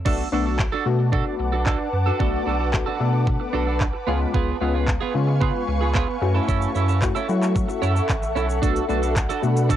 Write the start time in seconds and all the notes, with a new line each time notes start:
0.05 B1 A3 B3 D4 F#4 A4 B4 F#5 A5 D6, kick, crash
0.32 B1 A3 B3 D4 F#4 A4
0.46 D4 F#4 A4
0.59 muted clean electric guitar stroke, kick, clap
0.72 D4 F#4 A4
0.86 B2 A3 B3 D4 F#4, muted clean electric guitar stroke
0.99 muted clean electric guitar stroke
1.12 D4 F#4 A4, kick
1.26 muted clean electric guitar stroke
1.39 B1, muted clean electric guitar stroke
1.52 D4 F#4 A4
1.66 D4 F#4 A4, kick, clap
1.79 muted clean electric guitar stroke
1.93 F#2, muted clean electric guitar stroke
2.06 D4 F#4 A4
2.19 B1 A3 B3 D4 F#4 A4, kick
2.46 B1 D4 F#4 A4
2.59 D4 F#4 A4
2.73 A3 B3 D4 F#4, muted clean electric guitar stroke, kick, clap
2.86 D4 F#4 A4
3.00 B2 A3 B3 D4 A4, muted clean electric guitar stroke
3.13 muted clean electric guitar stroke
3.27 muted clean electric guitar stroke, kick
3.40 muted clean electric guitar stroke
3.53 B1 D4 F#4 A4
3.67 D4 F#4 A4
3.81 kick, clap
3.94 muted clean electric guitar stroke
4.07 C#2 G#3 B3 C#4 F4 G#4 F5 G#5 C#6
4.20 muted clean electric guitar stroke
4.34 C#2 B3 F4 G#4, kick
4.61 C#2 G#3 B3 C#4 F4 G#4
4.74 B3 F4 G#4
4.88 muted clean electric guitar stroke, kick, clap
5.01 B3 F4 G#4
5.14 C#3 G#3 B3 C#4 F4, muted clean electric guitar stroke
5.28 muted clean electric guitar stroke
5.41 B3 F4 G#4, kick
5.54 muted clean electric guitar stroke
5.68 C#2, muted clean electric guitar stroke
5.81 B3 F4 G#4
5.94 B3 F4 G#4, kick, clap
6.08 muted clean electric guitar stroke
6.21 F#2 A3 C#4 E4 F#4 A4 E5 F#5, muted clean electric guitar stroke
6.35 C#4 E4 A4
6.48 F#2 C#4 E4 A4, kick, shaker
6.62 shaker
6.75 F#2 C#4 E4 A4, shaker
6.88 C#4 E4 A4, shaker
7.02 A3 C#4 E4 F#4, muted clean electric guitar stroke, kick, clap, shaker
7.15 C#4 E4 A4, shaker
7.28 F#3 A3 C#4 E4 F#4, muted clean electric guitar stroke, shaker
7.42 muted clean electric guitar stroke, clap, shaker
7.55 muted clean electric guitar stroke, kick, shaker
7.69 muted clean electric guitar stroke, shaker
7.82 F#2 C#4 E4 A4, shaker
7.95 C#4 E4 A4, shaker
8.09 A1 E5, kick, clap, shaker
8.22 muted clean electric guitar stroke, shaker
8.35 B1 C#4 E4 A4, shaker
8.49 muted clean electric guitar stroke, shaker
8.62 B1 A3 B3 D4 F#4 A4 D5 B5, kick, closed hi-hat, shaker
8.76 closed hi-hat, shaker
8.89 B1 A3 B3 D4 F#4 A4, shaker
9.02 D4 F#4 A4, closed hi-hat, shaker
9.16 muted clean electric guitar stroke, kick, clap, closed hi-hat, shaker
9.29 D4 F#4 A4, closed hi-hat, shaker
9.42 B2 A3 B3 D4 F#4, muted clean electric guitar stroke, shaker
9.56 muted clean electric guitar stroke, closed hi-hat, shaker
9.69 D4 F#4 A4, kick, closed hi-hat, shaker